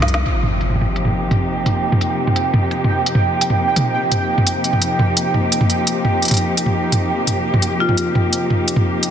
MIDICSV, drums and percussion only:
0, 0, Header, 1, 2, 480
1, 0, Start_track
1, 0, Key_signature, -3, "minor"
1, 0, Tempo, 350877
1, 352, Time_signature, 4, 2, 24, 8
1, 12456, End_track
2, 0, Start_track
2, 0, Title_t, "Drums"
2, 30, Note_on_c, 9, 38, 96
2, 111, Note_on_c, 9, 42, 39
2, 167, Note_off_c, 9, 38, 0
2, 192, Note_on_c, 9, 38, 105
2, 248, Note_off_c, 9, 42, 0
2, 328, Note_off_c, 9, 38, 0
2, 350, Note_on_c, 9, 42, 72
2, 487, Note_off_c, 9, 42, 0
2, 590, Note_on_c, 9, 45, 47
2, 727, Note_off_c, 9, 45, 0
2, 831, Note_on_c, 9, 42, 59
2, 953, Note_on_c, 9, 45, 35
2, 968, Note_off_c, 9, 42, 0
2, 1033, Note_off_c, 9, 45, 0
2, 1033, Note_on_c, 9, 45, 44
2, 1112, Note_off_c, 9, 45, 0
2, 1112, Note_on_c, 9, 45, 59
2, 1249, Note_off_c, 9, 45, 0
2, 1313, Note_on_c, 9, 42, 74
2, 1435, Note_on_c, 9, 45, 47
2, 1450, Note_off_c, 9, 42, 0
2, 1471, Note_off_c, 9, 45, 0
2, 1471, Note_on_c, 9, 45, 35
2, 1514, Note_off_c, 9, 45, 0
2, 1514, Note_on_c, 9, 45, 30
2, 1651, Note_off_c, 9, 45, 0
2, 1793, Note_on_c, 9, 42, 60
2, 1793, Note_on_c, 9, 45, 74
2, 1930, Note_off_c, 9, 42, 0
2, 1930, Note_off_c, 9, 45, 0
2, 2271, Note_on_c, 9, 42, 72
2, 2271, Note_on_c, 9, 45, 47
2, 2408, Note_off_c, 9, 42, 0
2, 2408, Note_off_c, 9, 45, 0
2, 2631, Note_on_c, 9, 45, 68
2, 2751, Note_on_c, 9, 42, 61
2, 2767, Note_off_c, 9, 45, 0
2, 2888, Note_off_c, 9, 42, 0
2, 3110, Note_on_c, 9, 45, 48
2, 3228, Note_on_c, 9, 42, 68
2, 3247, Note_off_c, 9, 45, 0
2, 3365, Note_off_c, 9, 42, 0
2, 3470, Note_on_c, 9, 45, 73
2, 3607, Note_off_c, 9, 45, 0
2, 3711, Note_on_c, 9, 42, 60
2, 3847, Note_off_c, 9, 42, 0
2, 3890, Note_on_c, 9, 45, 45
2, 4027, Note_off_c, 9, 45, 0
2, 4191, Note_on_c, 9, 42, 69
2, 4310, Note_on_c, 9, 45, 71
2, 4328, Note_off_c, 9, 42, 0
2, 4447, Note_off_c, 9, 45, 0
2, 4668, Note_on_c, 9, 42, 64
2, 4789, Note_on_c, 9, 45, 45
2, 4805, Note_off_c, 9, 42, 0
2, 4926, Note_off_c, 9, 45, 0
2, 5148, Note_on_c, 9, 42, 68
2, 5148, Note_on_c, 9, 45, 65
2, 5285, Note_off_c, 9, 42, 0
2, 5285, Note_off_c, 9, 45, 0
2, 5631, Note_on_c, 9, 42, 62
2, 5631, Note_on_c, 9, 45, 46
2, 5767, Note_off_c, 9, 42, 0
2, 5767, Note_off_c, 9, 45, 0
2, 5990, Note_on_c, 9, 45, 64
2, 6109, Note_on_c, 9, 42, 73
2, 6127, Note_off_c, 9, 45, 0
2, 6246, Note_off_c, 9, 42, 0
2, 6350, Note_on_c, 9, 42, 31
2, 6471, Note_on_c, 9, 45, 46
2, 6487, Note_off_c, 9, 42, 0
2, 6589, Note_on_c, 9, 42, 59
2, 6608, Note_off_c, 9, 45, 0
2, 6725, Note_off_c, 9, 42, 0
2, 6830, Note_on_c, 9, 45, 69
2, 6967, Note_off_c, 9, 45, 0
2, 7069, Note_on_c, 9, 42, 65
2, 7206, Note_off_c, 9, 42, 0
2, 7308, Note_on_c, 9, 45, 46
2, 7445, Note_off_c, 9, 45, 0
2, 7552, Note_on_c, 9, 42, 58
2, 7672, Note_on_c, 9, 45, 67
2, 7688, Note_off_c, 9, 42, 0
2, 7793, Note_on_c, 9, 42, 33
2, 7809, Note_off_c, 9, 45, 0
2, 7930, Note_off_c, 9, 42, 0
2, 8030, Note_on_c, 9, 42, 64
2, 8167, Note_off_c, 9, 42, 0
2, 8272, Note_on_c, 9, 45, 44
2, 8409, Note_off_c, 9, 45, 0
2, 8514, Note_on_c, 9, 42, 25
2, 8552, Note_off_c, 9, 42, 0
2, 8552, Note_on_c, 9, 42, 30
2, 8593, Note_off_c, 9, 42, 0
2, 8593, Note_on_c, 9, 42, 35
2, 8633, Note_off_c, 9, 42, 0
2, 8633, Note_on_c, 9, 42, 41
2, 8633, Note_on_c, 9, 45, 70
2, 8672, Note_off_c, 9, 42, 0
2, 8672, Note_on_c, 9, 42, 48
2, 8711, Note_off_c, 9, 42, 0
2, 8711, Note_on_c, 9, 42, 48
2, 8770, Note_off_c, 9, 45, 0
2, 8848, Note_off_c, 9, 42, 0
2, 8993, Note_on_c, 9, 42, 65
2, 9113, Note_on_c, 9, 45, 43
2, 9130, Note_off_c, 9, 42, 0
2, 9249, Note_off_c, 9, 45, 0
2, 9471, Note_on_c, 9, 42, 59
2, 9471, Note_on_c, 9, 45, 67
2, 9608, Note_off_c, 9, 42, 0
2, 9608, Note_off_c, 9, 45, 0
2, 9949, Note_on_c, 9, 42, 66
2, 9949, Note_on_c, 9, 45, 46
2, 10086, Note_off_c, 9, 42, 0
2, 10086, Note_off_c, 9, 45, 0
2, 10311, Note_on_c, 9, 45, 72
2, 10428, Note_on_c, 9, 42, 54
2, 10448, Note_off_c, 9, 45, 0
2, 10565, Note_off_c, 9, 42, 0
2, 10791, Note_on_c, 9, 45, 48
2, 10909, Note_on_c, 9, 42, 62
2, 10927, Note_off_c, 9, 45, 0
2, 11046, Note_off_c, 9, 42, 0
2, 11152, Note_on_c, 9, 45, 69
2, 11289, Note_off_c, 9, 45, 0
2, 11391, Note_on_c, 9, 42, 56
2, 11527, Note_off_c, 9, 42, 0
2, 11633, Note_on_c, 9, 45, 50
2, 11769, Note_off_c, 9, 45, 0
2, 11870, Note_on_c, 9, 42, 68
2, 11989, Note_on_c, 9, 45, 77
2, 12007, Note_off_c, 9, 42, 0
2, 12126, Note_off_c, 9, 45, 0
2, 12350, Note_on_c, 9, 42, 60
2, 12456, Note_off_c, 9, 42, 0
2, 12456, End_track
0, 0, End_of_file